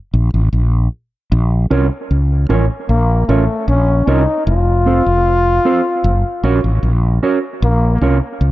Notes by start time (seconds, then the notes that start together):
0.14 A#1
0.34 A1
0.53 A#1
1.32 A#1
1.70 C2 C#4 F4 A#4 C#5
2.11 C#2
2.49 A1 C#4 F4 A#4 C#5
2.89 A#1 A#3
3.29 A1 A3 C#4 F4 A#4 C#5
3.68 A#1 C#4
4.07 C2 C#4 D#4 F4 A#4 C#5
4.47 F1 F4
4.86 C4 F4 A4 C5
5.06 F1
5.65 C4 F4 A4 C5
6.04 F#1
6.43 A#1 C#4 F#4 A#4 C#5
6.64 A1
6.83 A#1
7.23 C#4 F#4 A#4 C#5
7.62 A#1 A#3
8.01 C2 C#4 F4 A#4 C#5
8.41 C#2